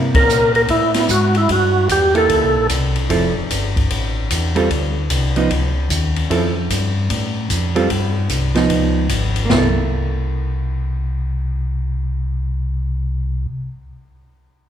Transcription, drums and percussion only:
0.15 kick medium
0.15 ride medium
0.29 hi-hat pedal medium
0.55 ride soft
0.68 kick soft
0.68 ride medium
0.94 snare soft
0.94 ride medium
1.08 kick soft
1.08 hi-hat pedal medium
1.35 ride soft
1.49 kick soft
1.49 ride medium
1.89 kick soft
1.89 hi-hat pedal soft
1.89 ride medium
2.15 ride soft
2.29 kick soft
2.29 ride medium
2.69 kick soft
2.69 hi-hat pedal medium
2.69 ride medium
2.96 ride soft
3.10 kick soft
3.10 ride medium
3.50 kick soft
3.50 hi-hat pedal medium
3.50 ride medium
3.76 kick soft
3.76 ride soft
3.90 kick soft
3.90 ride medium
4.30 kick soft
4.30 hi-hat pedal soft
4.30 ride medium
4.56 ride soft
4.71 kick soft
4.71 ride medium
5.10 kick soft
5.10 hi-hat pedal soft
5.10 ride medium
5.36 ride soft
5.50 kick soft
5.50 ride medium
5.90 kick soft
5.90 hi-hat pedal medium
5.90 ride medium
6.16 ride soft
6.31 kick soft
6.31 ride medium
6.70 kick soft
6.70 hi-hat pedal soft
6.70 ride medium
7.10 kick soft
7.10 ride medium
7.50 kick soft
7.50 hi-hat pedal medium
7.50 ride medium
7.76 ride soft
7.90 kick soft
7.90 ride medium
8.29 kick soft
8.29 hi-hat pedal soft
8.29 ride medium
8.55 snare soft
8.55 ride soft
8.70 kick soft
8.70 ride medium
9.09 kick soft
9.09 hi-hat pedal soft
9.09 ride medium
9.36 ride soft
9.50 snare medium
9.50 floor tom medium

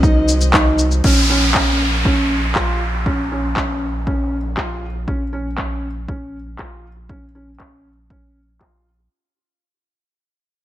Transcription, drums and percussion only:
0.03 kick loud
0.03 shaker soft
0.28 shaker medium
0.41 shaker soft
0.54 kick loud
0.54 clap medium
0.54 shaker soft
0.79 shaker medium
0.91 shaker soft
1.04 kick medium
1.04 crash medium
1.54 kick loud
1.54 clap medium
2.05 kick medium
2.55 kick medium
2.55 clap medium
3.06 kick medium
3.57 kick loud
3.57 clap medium
4.07 kick medium
4.57 kick loud
4.57 clap medium
5.08 kick medium
5.58 kick loud
5.58 clap medium
6.09 kick loud
6.59 kick medium
6.59 clap medium
7.09 kick medium
7.60 kick medium
7.60 clap medium
8.10 kick medium
8.61 kick medium
8.61 clap medium

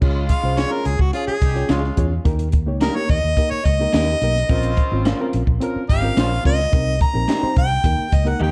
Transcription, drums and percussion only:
0.02 kick loud
0.02 crash medium
0.29 kick medium
0.29 closed hi-hat medium
0.57 snare medium
0.57 closed hi-hat medium
0.85 closed hi-hat medium
0.99 kick medium
1.13 closed hi-hat medium
1.42 kick medium
1.42 closed hi-hat medium
1.56 closed hi-hat soft
1.69 snare loud
1.69 closed hi-hat medium
1.84 snare soft
1.97 kick medium
1.97 closed hi-hat medium
2.25 kick loud
2.25 closed hi-hat medium
2.39 closed hi-hat medium
2.52 kick medium
2.52 closed hi-hat medium
2.81 snare loud
2.81 closed hi-hat medium
3.09 kick medium
3.09 closed hi-hat medium
3.37 kick medium
3.37 closed hi-hat medium
3.65 kick medium
3.65 closed hi-hat medium
3.93 snare loud
3.93 closed hi-hat medium
4.09 snare soft
4.22 closed hi-hat medium
4.36 snare soft
4.49 kick loud
4.49 closed hi-hat medium
4.63 closed hi-hat medium
4.77 kick medium
4.77 closed hi-hat medium
5.05 snare loud
5.05 closed hi-hat medium
5.33 closed hi-hat medium
5.47 kick medium
5.61 closed hi-hat medium
5.89 kick medium
5.89 closed hi-hat medium
6.17 snare loud
6.17 closed hi-hat loud
6.33 snare soft
6.45 kick medium
6.45 closed hi-hat medium
6.60 snare soft
6.73 kick loud
6.73 closed hi-hat medium
7.00 kick medium
7.00 closed hi-hat medium
7.29 snare loud
7.29 closed hi-hat medium
7.56 kick loud
7.56 closed hi-hat medium
7.84 kick medium
7.84 closed hi-hat medium
8.12 kick medium
8.12 closed hi-hat medium
8.27 closed hi-hat soft

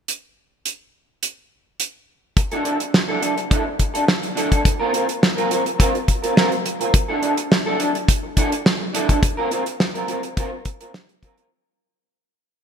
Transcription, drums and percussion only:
0.08 closed hi-hat medium
0.66 closed hi-hat medium
1.23 closed hi-hat medium
1.80 closed hi-hat medium
2.37 kick loud
2.37 closed hi-hat medium
2.51 closed hi-hat soft
2.65 closed hi-hat medium
2.80 closed hi-hat medium
2.94 snare loud
3.23 closed hi-hat medium
3.38 closed hi-hat soft
3.51 kick loud
3.51 closed hi-hat medium
3.79 kick medium
3.79 closed hi-hat medium
3.95 closed hi-hat medium
4.08 snare loud
4.23 closed hi-hat soft
4.37 closed hi-hat medium
4.52 kick medium
4.52 closed hi-hat medium
4.65 kick loud
4.65 closed hi-hat medium
4.94 closed hi-hat medium
5.09 closed hi-hat medium
5.23 snare loud
5.38 closed hi-hat soft
5.51 closed hi-hat medium
5.66 closed hi-hat soft
5.80 kick loud
5.80 closed hi-hat medium
5.95 closed hi-hat soft
6.08 kick medium
6.08 closed hi-hat medium
6.24 closed hi-hat soft
6.37 snare loud
6.52 closed hi-hat soft
6.66 closed hi-hat medium
6.81 closed hi-hat medium
6.94 kick loud
6.94 closed hi-hat loud
7.23 closed hi-hat medium
7.37 closed hi-hat medium
7.52 snare loud
7.80 closed hi-hat medium
7.95 closed hi-hat soft
8.08 kick loud
8.08 closed hi-hat medium
8.37 kick medium
8.37 closed hi-hat medium
8.52 closed hi-hat medium
8.66 snare loud
8.95 closed hi-hat medium
9.09 kick medium
9.09 closed hi-hat medium
9.23 kick loud
9.23 closed hi-hat medium
9.51 closed hi-hat medium
9.66 closed hi-hat medium
9.80 snare loud
9.95 closed hi-hat soft
10.08 closed hi-hat medium
10.23 closed hi-hat soft
10.37 kick loud
10.37 closed hi-hat medium
10.65 kick medium
10.65 closed hi-hat medium
10.81 closed hi-hat soft
10.94 snare loud
11.09 closed hi-hat soft
11.23 kick medium
11.23 closed hi-hat medium
11.38 closed hi-hat soft

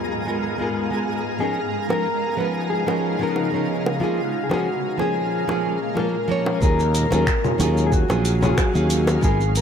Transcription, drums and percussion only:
1.90 high bongo medium
2.88 high bongo medium
3.36 high bongo medium
3.86 high bongo medium
4.51 high bongo medium
4.99 high bongo medium
5.49 high bongo medium
5.97 high bongo medium
6.46 high bongo medium
6.62 kick loud
6.62 shaker soft
6.80 shaker soft
6.95 open hi-hat loud
6.95 shaker medium
7.12 high bongo medium
7.12 shaker soft
7.27 finger snap loud
7.27 kick loud
7.27 shaker soft
7.44 low conga medium
7.44 shaker soft
7.60 open hi-hat medium
7.60 high bongo medium
7.60 shaker medium
7.78 shaker soft
7.92 kick loud
7.92 shaker soft
8.10 high bongo medium
8.10 shaker soft
8.25 open hi-hat medium
8.25 shaker medium
8.43 low conga medium
8.43 shaker soft
8.58 finger snap loud
8.58 kick loud
8.58 high bongo medium
8.58 shaker soft
8.75 shaker soft
8.90 open hi-hat medium
8.90 shaker medium
9.07 high bongo loud
9.07 shaker soft
9.23 kick loud
9.23 shaker soft
9.41 shaker soft
9.56 open hi-hat medium
9.56 shaker medium

